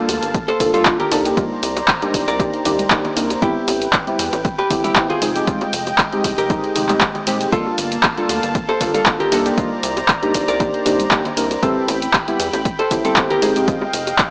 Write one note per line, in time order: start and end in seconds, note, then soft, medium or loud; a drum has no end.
0.00 1.10 A#3 medium
0.00 1.10 F5 medium
0.00 1.10 A5 medium
0.09 0.19 D2 loud
0.09 open hi-hat loud
0.09 ride medium
0.09 high bongo medium
0.09 cabasa medium
0.23 0.41 G1 medium
0.23 closed hi-hat medium
0.23 cabasa soft
0.34 kick loud
0.34 closed hi-hat medium
0.34 cabasa soft
0.48 0.70 A4 medium
0.48 0.70 C5 medium
0.48 closed hi-hat soft
0.48 high bongo medium
0.60 0.79 G1 loud
0.60 0.83 A#3 loud
0.60 0.83 D4 medium
0.60 0.83 F4 medium
0.60 0.83 A4 loud
0.60 kick medium
0.60 open hi-hat loud
0.60 ride medium
0.60 low conga medium
0.60 cabasa medium
0.74 0.96 F4 medium
0.74 0.96 A4 medium
0.74 closed hi-hat medium
0.74 high bongo medium
0.74 high conga medium
0.74 cabasa soft
0.85 1.08 A#3 medium
0.85 1.09 D4 medium
0.85 1.09 F4 medium
0.85 kick loud
0.85 clap loud
0.85 closed hi-hat medium
0.85 cabasa soft
0.99 1.44 G4 medium
0.99 1.44 A#4 medium
0.99 closed hi-hat soft
0.99 low conga medium
1.11 1.31 C2 medium
1.11 1.22 A#3 loud
1.11 1.22 D4 medium
1.11 1.22 D#4 medium
1.11 1.22 A4 loud
1.11 3.40 C5 medium
1.11 3.40 D5 medium
1.11 3.40 A#5 medium
1.11 open hi-hat loud
1.11 ride medium
1.11 high bongo medium
1.11 cabasa medium
1.25 1.35 A#3 medium
1.25 1.35 D4 medium
1.25 1.35 D#4 medium
1.25 1.35 G4 loud
1.25 closed hi-hat medium
1.25 cabasa soft
1.37 1.50 A#3 medium
1.37 1.50 D4 medium
1.37 1.50 D#4 medium
1.37 1.50 F4 loud
1.37 kick loud
1.37 closed hi-hat medium
1.37 high bongo medium
1.37 high conga loud
1.37 cabasa soft
1.63 1.82 C2 loud
1.63 open hi-hat loud
1.63 ride medium
1.63 cabasa medium
1.76 closed hi-hat medium
1.76 high bongo medium
1.76 cabasa soft
1.88 kick loud
1.88 clap loud
1.88 closed hi-hat medium
1.88 cabasa soft
2.02 2.37 A#3 medium
2.02 2.37 D4 medium
2.02 2.37 D#4 medium
2.02 2.37 G4 medium
2.02 closed hi-hat soft
2.02 high bongo medium
2.02 high conga medium
2.14 2.24 G1 loud
2.14 kick medium
2.14 open hi-hat loud
2.14 ride medium
2.14 cabasa medium
2.28 2.46 C2 medium
2.28 3.33 A#4 medium
2.28 3.33 D5 medium
2.28 closed hi-hat medium
2.28 cabasa soft
2.39 2.59 A#3 medium
2.39 2.60 D4 medium
2.39 2.60 D#4 medium
2.39 2.60 G4 loud
2.39 kick loud
2.39 closed hi-hat medium
2.39 high bongo medium
2.39 cabasa soft
2.54 closed hi-hat soft
2.65 2.85 C2 medium
2.65 2.78 A#3 loud
2.65 2.78 D4 medium
2.65 2.79 D#4 medium
2.65 2.79 G4 loud
2.65 open hi-hat loud
2.65 ride medium
2.65 high bongo medium
2.65 low conga medium
2.65 cabasa medium
2.79 closed hi-hat medium
2.79 high conga loud
2.79 cabasa soft
2.90 3.04 A#3 medium
2.90 3.04 D4 medium
2.90 3.04 D#4 medium
2.90 3.04 G4 loud
2.90 kick loud
2.90 clap loud
2.90 closed hi-hat medium
2.90 cabasa soft
3.05 closed hi-hat soft
3.05 high bongo medium
3.05 low conga medium
3.16 3.36 C2 medium
3.16 3.29 A#3 medium
3.16 3.30 D4 medium
3.16 3.30 D#4 medium
3.16 3.30 A#4 medium
3.16 open hi-hat loud
3.16 ride medium
3.16 cabasa medium
3.30 closed hi-hat medium
3.30 high bongo medium
3.30 cabasa soft
3.41 4.04 B3 medium
3.41 4.04 C4 medium
3.41 3.87 E4 medium
3.41 4.04 E4 medium
3.41 3.87 G4 medium
3.41 4.04 G4 medium
3.41 5.20 B4 medium
3.41 7.48 G5 medium
3.41 kick loud
3.41 closed hi-hat medium
3.41 high conga loud
3.41 cabasa soft
3.68 3.87 A1 loud
3.68 open hi-hat loud
3.68 ride medium
3.68 high bongo medium
3.68 cabasa medium
3.82 closed hi-hat medium
3.82 cabasa soft
3.93 kick loud
3.93 clap loud
3.93 closed hi-hat medium
3.93 high bongo medium
3.93 cabasa soft
4.07 4.18 B3 medium
4.07 4.19 C4 medium
4.07 4.19 E4 medium
4.07 4.19 G4 medium
4.07 closed hi-hat soft
4.07 high conga medium
4.19 4.29 E2 loud
4.19 open hi-hat loud
4.19 ride medium
4.19 cabasa medium
4.33 4.51 A1 medium
4.33 closed hi-hat soft
4.33 high bongo medium
4.33 cabasa soft
4.45 kick loud
4.45 closed hi-hat medium
4.45 cabasa soft
4.58 4.81 G4 medium
4.58 4.81 B4 medium
4.58 closed hi-hat soft
4.58 high bongo medium
4.70 4.90 A1 loud
4.70 4.93 B3 loud
4.70 4.93 C4 medium
4.70 4.93 E4 loud
4.70 4.93 G4 loud
4.70 kick medium
4.70 open hi-hat loud
4.70 ride medium
4.70 low conga medium
4.70 cabasa medium
4.84 5.06 E4 medium
4.84 5.06 G4 medium
4.84 closed hi-hat medium
4.84 high conga loud
4.84 cabasa soft
4.96 5.19 B3 medium
4.96 5.19 C4 medium
4.96 5.19 E4 medium
4.96 5.19 G4 medium
4.96 kick loud
4.96 clap loud
4.96 closed hi-hat medium
4.96 high bongo medium
4.96 cabasa soft
5.09 5.54 F4 medium
5.09 5.54 G#4 medium
5.09 closed hi-hat soft
5.09 low conga medium
5.21 5.41 F1 medium
5.21 5.32 G#3 loud
5.21 7.50 G#3 medium
5.21 5.32 C4 medium
5.21 5.32 D#4 medium
5.21 5.32 G#4 loud
5.21 7.50 D#5 medium
5.21 open hi-hat loud
5.21 ride medium
5.21 high bongo medium
5.21 cabasa medium
5.35 5.45 G#3 medium
5.35 5.45 C4 medium
5.35 5.46 D#4 medium
5.35 5.46 G4 loud
5.35 closed hi-hat medium
5.35 cabasa soft
5.47 5.60 G#3 medium
5.47 5.60 C4 medium
5.47 5.61 D#4 medium
5.47 5.61 F4 loud
5.47 kick loud
5.47 closed hi-hat medium
5.47 high conga loud
5.47 cabasa soft
5.61 closed hi-hat soft
5.61 high bongo medium
5.73 5.92 F1 loud
5.73 open hi-hat loud
5.73 ride medium
5.73 cabasa medium
5.87 closed hi-hat soft
5.87 high bongo soft
5.87 cabasa soft
5.98 kick loud
5.98 clap loud
5.98 closed hi-hat medium
5.98 cabasa soft
6.12 6.47 G#3 medium
6.12 6.47 C4 medium
6.12 6.47 D#4 medium
6.12 6.47 G4 medium
6.12 closed hi-hat soft
6.12 high conga medium
6.24 6.34 C2 medium
6.24 kick medium
6.24 open hi-hat loud
6.24 ride medium
6.24 high bongo medium
6.24 cabasa medium
6.38 6.56 F1 medium
6.38 7.43 G4 medium
6.38 7.43 A#4 medium
6.38 closed hi-hat soft
6.38 cabasa soft
6.49 6.70 G#3 medium
6.49 6.70 C4 medium
6.49 6.70 D#4 medium
6.49 6.70 G4 loud
6.49 kick loud
6.49 closed hi-hat medium
6.49 high bongo medium
6.49 cabasa soft
6.64 closed hi-hat soft
6.75 6.95 F1 medium
6.75 6.87 G#3 medium
6.75 6.87 C4 medium
6.75 6.87 D#4 medium
6.75 6.87 G4 loud
6.75 open hi-hat loud
6.75 ride medium
6.75 low conga medium
6.75 cabasa medium
6.89 7.00 G#3 medium
6.89 7.01 C4 medium
6.89 7.01 D#4 medium
6.89 7.01 G4 medium
6.89 clap soft
6.89 closed hi-hat soft
6.89 high bongo medium
6.89 high conga loud
6.89 cabasa soft
7.01 kick loud
7.01 clap loud
7.01 closed hi-hat medium
7.01 cabasa soft
7.15 closed hi-hat soft
7.15 high bongo soft
7.15 low conga medium
7.26 7.46 D#1 medium
7.26 7.49 G#3 loud
7.26 7.50 C4 loud
7.26 7.50 D#4 medium
7.26 7.50 G4 loud
7.26 open hi-hat loud
7.26 ride medium
7.26 cabasa medium
7.41 closed hi-hat medium
7.41 cabasa soft
7.52 8.14 A#3 medium
7.52 9.30 A#3 medium
7.52 8.14 D4 medium
7.52 7.98 F4 medium
7.52 8.14 F4 medium
7.52 7.98 A4 medium
7.52 8.15 A4 medium
7.52 9.30 F5 medium
7.52 9.30 A5 loud
7.52 kick loud
7.52 closed hi-hat medium
7.52 high conga medium
7.52 cabasa soft
7.66 high bongo medium
7.78 7.97 G1 loud
7.78 open hi-hat loud
7.78 ride medium
7.78 cabasa medium
7.92 closed hi-hat medium
7.92 cabasa soft
8.03 kick loud
8.03 clap loud
8.03 closed hi-hat medium
8.03 high bongo medium
8.03 cabasa soft
8.17 8.29 A#3 medium
8.17 8.29 D4 medium
8.17 8.29 F4 medium
8.17 8.29 A4 loud
8.17 closed hi-hat soft
8.17 high conga medium
8.29 8.39 D2 loud
8.29 open hi-hat loud
8.29 ride medium
8.29 high bongo medium
8.29 cabasa medium
8.43 8.61 G1 medium
8.43 closed hi-hat soft
8.43 cabasa soft
8.55 kick loud
8.55 closed hi-hat medium
8.55 cabasa soft
8.69 8.91 A4 medium
8.69 8.91 C5 medium
8.69 closed hi-hat soft
8.69 high bongo medium
8.80 9.00 G1 medium
8.80 9.03 A#3 loud
8.80 9.03 D4 medium
8.80 9.03 F4 loud
8.80 9.04 A4 loud
8.80 kick medium
8.80 open hi-hat loud
8.80 ride medium
8.80 low conga medium
8.80 cabasa medium
8.94 9.17 F4 medium
8.94 9.17 A4 medium
8.94 closed hi-hat medium
8.94 high bongo soft
8.94 high conga medium
8.94 cabasa soft
9.06 9.29 A#3 medium
9.06 9.29 D4 medium
9.06 9.29 F4 medium
9.06 9.29 A4 medium
9.06 kick loud
9.06 clap loud
9.06 closed hi-hat medium
9.06 cabasa soft
9.20 9.64 G4 medium
9.20 9.64 A#4 medium
9.20 closed hi-hat soft
9.20 low conga medium
9.32 9.51 C2 medium
9.32 9.42 A#3 loud
9.32 9.42 D4 medium
9.32 9.42 D#4 medium
9.32 9.43 A4 loud
9.32 11.60 C5 medium
9.32 11.60 D5 medium
9.32 11.60 A#5 medium
9.32 open hi-hat loud
9.32 ride medium
9.32 high bongo medium
9.32 cabasa medium
9.45 9.56 A#3 medium
9.45 9.56 D4 medium
9.45 9.56 D#4 medium
9.45 9.56 G4 loud
9.45 closed hi-hat medium
9.45 cabasa soft
9.57 9.71 A#3 medium
9.57 9.71 D4 medium
9.57 9.71 D#4 medium
9.57 9.71 F4 loud
9.57 kick loud
9.57 closed hi-hat medium
9.57 high bongo medium
9.57 high conga medium
9.57 cabasa soft
9.83 10.03 C2 loud
9.83 open hi-hat loud
9.83 ride medium
9.83 cabasa medium
9.97 closed hi-hat medium
9.97 high bongo medium
9.97 cabasa soft
10.08 kick loud
10.08 clap loud
10.08 closed hi-hat medium
10.08 cabasa soft
10.22 10.57 A#3 medium
10.22 10.57 D4 medium
10.22 10.57 D#4 medium
10.22 10.58 G4 medium
10.22 closed hi-hat soft
10.22 high bongo medium
10.22 high conga medium
10.34 10.45 G1 loud
10.34 kick medium
10.34 open hi-hat loud
10.34 ride medium
10.34 cabasa medium
10.48 10.67 C2 medium
10.48 11.53 A#4 medium
10.48 11.53 D5 medium
10.48 closed hi-hat soft
10.48 cabasa soft
10.60 10.80 A#3 medium
10.60 10.80 D4 medium
10.60 10.80 D#4 medium
10.60 10.80 G4 loud
10.60 kick loud
10.60 closed hi-hat medium
10.60 high bongo medium
10.60 cabasa soft
10.74 closed hi-hat soft
10.85 11.05 C2 medium
10.85 10.99 A#3 loud
10.85 10.99 D4 medium
10.85 10.99 D#4 medium
10.85 10.99 G4 loud
10.85 open hi-hat loud
10.85 ride medium
10.85 high bongo medium
10.85 low conga medium
10.85 cabasa medium
11.00 closed hi-hat soft
11.00 high conga medium
11.00 cabasa soft
11.11 11.24 A#3 medium
11.11 11.25 D4 medium
11.11 11.25 D#4 medium
11.11 11.25 G4 loud
11.11 kick loud
11.11 clap loud
11.11 closed hi-hat medium
11.11 cabasa soft
11.25 closed hi-hat soft
11.25 high bongo medium
11.25 low conga medium
11.37 11.56 C2 medium
11.37 11.50 A#3 medium
11.37 11.50 D4 medium
11.37 11.50 D#4 medium
11.37 11.50 A#4 medium
11.37 open hi-hat loud
11.37 ride medium
11.37 cabasa medium
11.51 closed hi-hat medium
11.51 high bongo medium
11.51 cabasa soft
11.62 12.24 C4 medium
11.62 12.08 C4 medium
11.62 12.25 E4 medium
11.62 12.25 G4 medium
11.62 12.08 A4 medium
11.62 12.24 B4 medium
11.62 14.30 G5 medium
11.62 13.40 B5 loud
11.62 kick loud
11.62 closed hi-hat medium
11.62 high conga medium
11.62 cabasa soft
11.88 12.08 A1 loud
11.88 open hi-hat loud
11.88 ride medium
11.88 high bongo medium
11.88 cabasa medium
12.02 closed hi-hat medium
12.02 cabasa soft
12.13 kick loud
12.13 clap loud
12.13 closed hi-hat medium
12.13 high bongo medium
12.13 cabasa soft
12.27 12.39 B3 medium
12.27 12.39 C4 medium
12.27 12.39 E4 medium
12.27 12.39 G4 loud
12.27 closed hi-hat soft
12.27 high conga medium
12.40 12.50 E2 loud
12.40 open hi-hat loud
12.40 ride medium
12.40 cabasa medium
12.53 12.72 A1 medium
12.53 closed hi-hat medium
12.53 high bongo medium
12.53 cabasa soft
12.65 kick loud
12.65 closed hi-hat medium
12.65 cabasa soft
12.79 13.01 A4 medium
12.79 13.01 C5 medium
12.79 closed hi-hat soft
12.79 high bongo medium
12.90 13.10 A1 medium
12.90 13.13 B3 loud
12.90 13.14 C4 medium
12.90 13.14 E4 medium
12.90 13.14 G4 loud
12.90 kick medium
12.90 open hi-hat loud
12.90 ride medium
12.90 low conga medium
12.90 cabasa medium
13.05 13.27 C4 medium
13.05 13.27 A4 medium
13.05 closed hi-hat medium
13.05 high conga medium
13.05 cabasa soft
13.16 13.39 B3 medium
13.16 13.39 C4 medium
13.16 13.40 G4 medium
13.16 kick loud
13.16 clap loud
13.16 closed hi-hat medium
13.16 high bongo medium
13.16 cabasa soft
13.30 13.75 G4 medium
13.30 13.75 A#4 medium
13.30 closed hi-hat soft
13.30 low conga medium
13.42 13.62 F1 medium
13.42 13.52 G#3 loud
13.42 13.53 C4 medium
13.42 13.53 D#4 medium
13.42 13.53 G#4 loud
13.42 14.30 D#5 medium
13.42 14.30 F5 medium
13.42 open hi-hat loud
13.42 ride medium
13.42 high bongo medium
13.42 cabasa medium
13.56 13.66 G#3 medium
13.56 13.66 C4 medium
13.56 13.66 D#4 medium
13.56 13.66 G4 loud
13.56 closed hi-hat medium
13.56 cabasa soft
13.67 13.81 G#3 medium
13.67 13.81 C4 medium
13.67 13.81 D#4 medium
13.67 13.81 F4 loud
13.67 kick loud
13.67 closed hi-hat medium
13.67 high conga medium
13.67 cabasa soft
13.82 high bongo medium
13.93 14.13 F1 loud
13.93 open hi-hat loud
13.93 ride medium
13.93 cabasa medium
14.07 closed hi-hat medium
14.07 high bongo medium
14.07 cabasa soft
14.19 kick loud
14.19 clap loud
14.19 closed hi-hat medium
14.19 cabasa soft